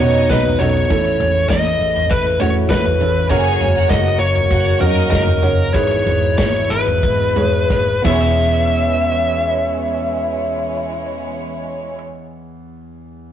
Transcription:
Already playing: B2 C#3 F#3 B3 D#4
0.00 B2 B3 C#4 D#4 F#4 C#5 D#5, floor tom, ride
0.30 B1 B4, kick, snare, ride
0.46 floor tom
0.59 B1 B3 C#4 D#4 F#4 A4 C#5, snare, ride
0.89 A1 A2 E3 A3 C#4 E4 A4, kick, ride
1.20 A1, floor tom, ride
1.50 A1 D#5, kick, snare, ride
1.66 ride
1.81 A1, ride
1.96 floor tom, ride
2.11 A1 B4, kick, ride
2.40 A2 C#4 E4 F#4 C#5, floor tom, ride
2.70 A1 B4, kick, snare, ride
2.86 floor tom
3.00 A1 C#4 E4 A4, ride
3.28 F#1 F#3 A#3 C#4 F#4 G#4 A#4 C#5 G#5, kick, ride
3.61 F#1, floor tom, ride
3.76 F#4 F#5
3.90 F#1 D#5, kick, snare, ride
4.19 F#1 C#5, ride
4.35 floor tom, ride
4.51 F#1 F#4 F#5, kick, ride
4.80 F#2 C#4 D#4 F#4 A#4 D#5, floor tom, ride
5.11 F#1 A#4, kick, snare, ride
5.27 floor tom
5.42 F#1 C#4 F#4 C#5, snare, ride
5.73 G#1 G#2 B2 E3 G#3 E4 G#4 B4 C#5, kick, ride
6.06 G#1, floor tom, ride
6.38 G#1 C#5, kick, snare, ride
6.55 ride
6.70 G#1 B4, ride
6.86 floor tom, ride
7.03 G#1, kick, ride
7.36 G#2 E4 G#4 C#5, floor tom, ride
7.70 G#1, kick, snare
8.02 E1 E2 B2 E3 G#3 B3 C#4 E4 G#4 C#5 E5, kick, crash
8.06 G#3 C#5

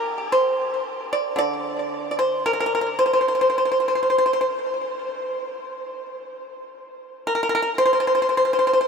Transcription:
Already playing: A#4
0.32 C5
1.13 D5
1.36 D3 D5
2.11 D5
2.19 C5
2.46 A#4
2.53 A#4
2.60 A#4
2.66 A#4
2.75 A#4
2.81 A#4
2.99 C5
3.06 C5
3.13 C5
3.21 C5
3.28 C5
3.35 C5
3.41 C5
3.50 C5
3.58 C5
3.65 C5
3.72 C5
3.80 C5
3.88 C5
3.95 C5
4.03 C5
4.10 C5
4.18 C5
4.26 C5
4.33 C5
4.41 C5
7.27 A#4
7.35 A#4
7.43 A#4
7.49 A#4
7.55 A#4
7.62 A#4
7.78 C5
7.86 C5
7.93 C5
8.00 C5
8.07 C5
8.15 C5
8.22 C5
8.29 C5
8.37 C5
8.45 C5
8.53 C5
8.59 C5
8.67 C5
8.73 C5
8.81 C5

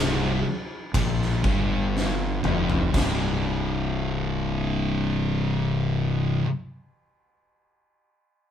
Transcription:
Already playing: C1 C2
0.94 A#1 A#2, kick, ride bell
1.22 snare
1.44 G1 G2, kick
1.97 snare
2.44 F1 F2, mid tom
2.69 floor tom
2.93 C1 C2 G2 C3, kick, snare, splash

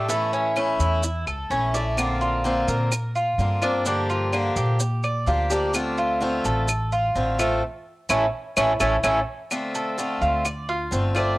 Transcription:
Already playing: A2
0.08 E3 A3 C#4 E4, maracas
0.33 C#4, maracas
0.56 E3 A3 C#4 E4, claves, maracas
0.79 E2 E4, maracas
1.03 muted steel-string acoustic guitar stroke, maracas
1.27 C#2 A4, claves, maracas
1.50 A#1 E3 A3 C#4 E4, maracas
1.74 A3 C#4 E4 D5, maracas
1.97 D3 A#3 C4 F4, claves, maracas
2.21 F4, maracas
2.44 D3 A#3 C4 F4, maracas
2.68 A#2 A#4, maracas
2.92 muted steel-string acoustic guitar stroke, claves, maracas
3.15 F4, maracas
3.38 G2 D3 A#3 C4 F4, maracas
3.62 A#3 C4 D4 F4, claves, maracas
3.85 D3 F3 A#3 D4 G4, maracas
4.10 F4, maracas
4.32 D3 F3 A#3 D4 G4, claves, maracas
4.56 A#2 G4, maracas
4.80 muted steel-string acoustic guitar stroke, maracas
5.03 D5, claves, maracas
5.26 D2 F3 A#3 D4 F4 G4, maracas
5.50 F3 A#3 D4 G4 D5, maracas
5.74 D3 A3 C4 F4, claves, maracas
5.97 F4, maracas
6.21 D3 A3 C4 F4, maracas
6.44 A1 A4, maracas
6.68 muted steel-string acoustic guitar stroke, claves, maracas
6.92 F4, maracas
7.15 A1 D3 A3 C4 F4, maracas
7.39 A3 C4 F4, claves, maracas
8.09 A1 E3 A3 C#4 E4 A4, claves, maracas
8.57 A1 E3 A3 C#4 E4 A4, claves, maracas
8.80 A1 E3 A3 C#4 E4 A4, claves, maracas
9.03 A1 E3 A3 C#4 E4 A4, claves, maracas
9.51 D3 A3 C4 F4, claves, maracas
9.75 A4, maracas
9.98 D3 A3 C4 F4, maracas
10.21 D2 F4, maracas
10.45 D5, muted steel-string acoustic guitar stroke, claves, maracas
10.69 F4
10.91 G1 D3 A3 C4 F4, maracas
11.15 A3 C4 F4 D5, claves, maracas

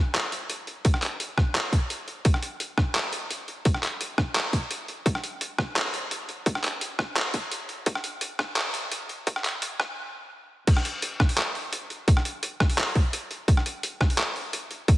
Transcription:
0.15 clap, closed hi-hat
0.32 closed hi-hat
0.50 closed hi-hat
0.67 closed hi-hat
0.85 kick, closed hi-hat
0.94 cross-stick
1.02 clap, closed hi-hat
1.20 closed hi-hat
1.38 kick, cross-stick
1.55 clap, closed hi-hat
1.73 kick, closed hi-hat
1.90 closed hi-hat
2.08 closed hi-hat
2.25 kick, closed hi-hat
2.34 cross-stick
2.43 closed hi-hat
2.60 closed hi-hat
2.78 kick, cross-stick
2.95 clap, closed hi-hat
3.13 closed hi-hat
3.31 closed hi-hat
3.48 closed hi-hat
3.65 kick, closed hi-hat
3.74 cross-stick
3.83 clap, closed hi-hat
4.01 closed hi-hat
4.18 kick, cross-stick
4.35 clap, closed hi-hat
4.53 kick, closed hi-hat
4.71 closed hi-hat
4.88 closed hi-hat
5.06 kick, closed hi-hat
5.15 cross-stick
5.24 closed hi-hat
5.41 closed hi-hat
5.58 kick, cross-stick
5.76 clap, closed hi-hat
5.94 closed hi-hat
6.11 closed hi-hat
6.29 closed hi-hat
6.46 kick, closed hi-hat
6.55 cross-stick
6.64 clap, closed hi-hat
6.81 closed hi-hat
6.99 kick, cross-stick
7.16 clap, closed hi-hat
7.34 kick, closed hi-hat
7.51 closed hi-hat
7.69 closed hi-hat
7.86 kick, closed hi-hat
7.95 cross-stick
8.04 closed hi-hat
8.21 closed hi-hat
8.39 kick, cross-stick
8.56 clap, closed hi-hat
8.74 closed hi-hat
8.92 closed hi-hat
9.09 closed hi-hat
9.27 kick, closed hi-hat
9.36 cross-stick
9.44 clap, closed hi-hat
9.62 closed hi-hat
9.80 kick, cross-stick
10.67 kick, closed hi-hat, crash
10.77 cross-stick
10.85 closed hi-hat
11.02 closed hi-hat
11.20 kick, cross-stick
11.29 open hi-hat
11.38 clap, closed hi-hat
11.55 open hi-hat
11.73 closed hi-hat
11.90 closed hi-hat
12.08 kick, closed hi-hat
12.17 cross-stick
12.25 closed hi-hat
12.43 closed hi-hat
12.60 kick, cross-stick
12.70 open hi-hat
12.78 clap, closed hi-hat
12.87 open hi-hat
12.95 kick, open hi-hat
13.13 closed hi-hat
13.31 closed hi-hat
13.48 kick, closed hi-hat
13.57 cross-stick
13.66 closed hi-hat
13.83 closed hi-hat
14.01 kick, cross-stick
14.10 open hi-hat
14.18 clap, closed hi-hat
14.36 open hi-hat
14.53 closed hi-hat
14.71 closed hi-hat
14.88 kick, closed hi-hat

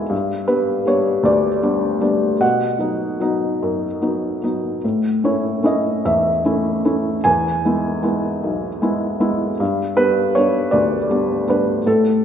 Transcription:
Already playing: B1 G#3 B3 E4 F#5 G#5
0.09 G2
0.48 G3 B3 D4 B4
0.85 G3 B3 D4 C#5
1.23 D2 D5
1.62 G3 B3 D4
2.01 G3 B3 D4
2.41 B2 F#5
2.79 F#3 B3 D#4
3.20 F#3 B3 D#4
3.63 F#2
4.02 F#3 B3 D#4
4.43 F#3 B3 D#4
4.84 A2
5.24 A3 C#4 E4 C#5
5.63 A3 C#4 E4 D#5
6.05 E2 E5
6.45 A3 C#4 E4
6.84 A3 C#4 E4
7.24 E2 G#5
7.65 G#3 B3 E4
8.03 G#3 B3 E4
8.44 B1
8.82 G#3 B3 E4
9.20 G#3 B3 E4
9.60 G2
9.96 G3 B3 D4 B4
10.35 G3 B3 D4 C#5
10.71 D2 D5
11.10 G3 B3 D4
11.47 G3 B3 D4 B4
11.86 A2 A4

